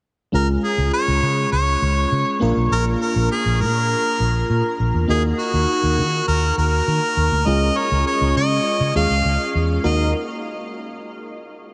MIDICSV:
0, 0, Header, 1, 4, 480
1, 0, Start_track
1, 0, Key_signature, -6, "minor"
1, 0, Tempo, 594059
1, 271, Time_signature, 4, 2, 24, 8
1, 9483, End_track
2, 0, Start_track
2, 0, Title_t, "Harmonica"
2, 0, Program_c, 0, 22
2, 279, Note_on_c, 0, 70, 88
2, 385, Note_off_c, 0, 70, 0
2, 516, Note_on_c, 0, 68, 75
2, 737, Note_off_c, 0, 68, 0
2, 754, Note_on_c, 0, 73, 104
2, 1200, Note_off_c, 0, 73, 0
2, 1230, Note_on_c, 0, 73, 101
2, 1918, Note_off_c, 0, 73, 0
2, 2198, Note_on_c, 0, 70, 104
2, 2304, Note_off_c, 0, 70, 0
2, 2435, Note_on_c, 0, 70, 91
2, 2656, Note_off_c, 0, 70, 0
2, 2677, Note_on_c, 0, 68, 92
2, 2915, Note_on_c, 0, 70, 98
2, 2927, Note_off_c, 0, 68, 0
2, 3873, Note_off_c, 0, 70, 0
2, 4120, Note_on_c, 0, 68, 83
2, 4226, Note_off_c, 0, 68, 0
2, 4351, Note_on_c, 0, 66, 87
2, 5039, Note_off_c, 0, 66, 0
2, 5071, Note_on_c, 0, 70, 92
2, 5294, Note_off_c, 0, 70, 0
2, 5315, Note_on_c, 0, 70, 92
2, 6038, Note_on_c, 0, 75, 106
2, 6050, Note_off_c, 0, 70, 0
2, 6278, Note_on_c, 0, 73, 94
2, 6290, Note_off_c, 0, 75, 0
2, 6514, Note_off_c, 0, 73, 0
2, 6520, Note_on_c, 0, 73, 97
2, 6739, Note_off_c, 0, 73, 0
2, 6762, Note_on_c, 0, 75, 104
2, 7204, Note_off_c, 0, 75, 0
2, 7241, Note_on_c, 0, 77, 101
2, 7683, Note_off_c, 0, 77, 0
2, 7956, Note_on_c, 0, 75, 87
2, 8177, Note_off_c, 0, 75, 0
2, 9483, End_track
3, 0, Start_track
3, 0, Title_t, "FM electric piano"
3, 0, Program_c, 1, 5
3, 260, Note_on_c, 1, 56, 60
3, 265, Note_on_c, 1, 61, 57
3, 272, Note_on_c, 1, 65, 51
3, 278, Note_on_c, 1, 68, 64
3, 426, Control_c, 1, 64, 127
3, 1913, Note_off_c, 1, 56, 0
3, 1916, Note_off_c, 1, 61, 0
3, 1919, Note_off_c, 1, 65, 0
3, 1922, Note_off_c, 1, 68, 0
3, 1937, Note_on_c, 1, 58, 72
3, 1945, Note_on_c, 1, 62, 62
3, 1950, Note_on_c, 1, 65, 66
3, 1958, Note_on_c, 1, 70, 81
3, 1962, Control_c, 1, 64, 0
3, 2086, Control_c, 1, 64, 127
3, 3832, Note_off_c, 1, 58, 0
3, 3836, Note_off_c, 1, 62, 0
3, 3838, Note_off_c, 1, 65, 0
3, 3842, Note_off_c, 1, 70, 0
3, 4101, Note_on_c, 1, 58, 60
3, 4109, Note_on_c, 1, 63, 58
3, 4115, Note_on_c, 1, 66, 57
3, 4121, Control_c, 1, 64, 0
3, 4122, Note_on_c, 1, 70, 64
3, 4283, Control_c, 1, 64, 127
3, 5994, Note_off_c, 1, 58, 0
3, 5997, Note_off_c, 1, 63, 0
3, 6001, Note_off_c, 1, 66, 0
3, 6004, Note_off_c, 1, 70, 0
3, 6024, Note_on_c, 1, 56, 62
3, 6029, Note_on_c, 1, 61, 56
3, 6035, Note_on_c, 1, 65, 56
3, 6042, Control_c, 1, 64, 0
3, 6043, Note_on_c, 1, 68, 70
3, 6163, Control_c, 1, 64, 127
3, 7203, Note_off_c, 1, 56, 0
3, 7206, Note_off_c, 1, 61, 0
3, 7209, Note_off_c, 1, 65, 0
3, 7213, Note_off_c, 1, 68, 0
3, 7229, Note_on_c, 1, 56, 52
3, 7232, Note_on_c, 1, 61, 46
3, 7236, Note_on_c, 1, 65, 48
3, 7237, Note_on_c, 1, 68, 54
3, 7950, Note_off_c, 1, 56, 0
3, 7950, Note_on_c, 1, 58, 76
3, 7951, Note_off_c, 1, 61, 0
3, 7951, Note_on_c, 1, 66, 74
3, 7951, Note_on_c, 1, 70, 84
3, 7952, Note_on_c, 1, 63, 65
3, 7953, Note_off_c, 1, 65, 0
3, 7954, Note_off_c, 1, 68, 0
3, 7962, Control_c, 1, 64, 0
3, 8174, Note_off_c, 1, 58, 0
3, 8174, Note_off_c, 1, 63, 0
3, 8174, Note_off_c, 1, 66, 0
3, 8174, Note_off_c, 1, 70, 0
3, 9483, End_track
4, 0, Start_track
4, 0, Title_t, "Fingered electric bass"
4, 0, Program_c, 2, 33
4, 271, Note_on_c, 2, 37, 94
4, 451, Note_off_c, 2, 37, 0
4, 629, Note_on_c, 2, 37, 93
4, 720, Note_off_c, 2, 37, 0
4, 871, Note_on_c, 2, 37, 92
4, 961, Note_off_c, 2, 37, 0
4, 989, Note_on_c, 2, 49, 90
4, 1170, Note_off_c, 2, 49, 0
4, 1230, Note_on_c, 2, 37, 84
4, 1410, Note_off_c, 2, 37, 0
4, 1470, Note_on_c, 2, 37, 84
4, 1650, Note_off_c, 2, 37, 0
4, 1711, Note_on_c, 2, 49, 92
4, 1801, Note_off_c, 2, 49, 0
4, 1954, Note_on_c, 2, 34, 88
4, 2043, Note_off_c, 2, 34, 0
4, 2072, Note_on_c, 2, 35, 68
4, 2161, Note_off_c, 2, 35, 0
4, 2192, Note_on_c, 2, 34, 95
4, 2371, Note_off_c, 2, 34, 0
4, 2550, Note_on_c, 2, 34, 95
4, 2641, Note_off_c, 2, 34, 0
4, 2791, Note_on_c, 2, 34, 93
4, 2912, Note_on_c, 2, 46, 85
4, 2924, Note_off_c, 2, 34, 0
4, 3181, Note_off_c, 2, 46, 0
4, 3391, Note_on_c, 2, 34, 81
4, 3571, Note_off_c, 2, 34, 0
4, 3632, Note_on_c, 2, 46, 93
4, 3722, Note_off_c, 2, 46, 0
4, 3875, Note_on_c, 2, 34, 77
4, 3963, Note_off_c, 2, 34, 0
4, 3992, Note_on_c, 2, 40, 79
4, 4082, Note_off_c, 2, 40, 0
4, 4113, Note_on_c, 2, 39, 99
4, 4292, Note_off_c, 2, 39, 0
4, 4472, Note_on_c, 2, 39, 93
4, 4561, Note_off_c, 2, 39, 0
4, 4712, Note_on_c, 2, 39, 92
4, 4835, Note_on_c, 2, 51, 82
4, 4847, Note_off_c, 2, 39, 0
4, 5013, Note_off_c, 2, 51, 0
4, 5073, Note_on_c, 2, 39, 88
4, 5252, Note_off_c, 2, 39, 0
4, 5313, Note_on_c, 2, 39, 89
4, 5492, Note_off_c, 2, 39, 0
4, 5555, Note_on_c, 2, 51, 96
4, 5643, Note_off_c, 2, 51, 0
4, 5791, Note_on_c, 2, 39, 80
4, 5881, Note_off_c, 2, 39, 0
4, 5912, Note_on_c, 2, 38, 88
4, 6002, Note_off_c, 2, 38, 0
4, 6033, Note_on_c, 2, 37, 104
4, 6212, Note_off_c, 2, 37, 0
4, 6394, Note_on_c, 2, 37, 91
4, 6483, Note_off_c, 2, 37, 0
4, 6635, Note_on_c, 2, 37, 105
4, 6723, Note_off_c, 2, 37, 0
4, 6757, Note_on_c, 2, 49, 93
4, 6934, Note_off_c, 2, 49, 0
4, 7112, Note_on_c, 2, 49, 90
4, 7201, Note_off_c, 2, 49, 0
4, 7235, Note_on_c, 2, 39, 86
4, 7323, Note_off_c, 2, 39, 0
4, 7352, Note_on_c, 2, 37, 86
4, 7442, Note_off_c, 2, 37, 0
4, 7474, Note_on_c, 2, 37, 102
4, 7563, Note_off_c, 2, 37, 0
4, 7716, Note_on_c, 2, 40, 83
4, 7894, Note_off_c, 2, 40, 0
4, 7955, Note_on_c, 2, 39, 97
4, 8176, Note_off_c, 2, 39, 0
4, 9483, End_track
0, 0, End_of_file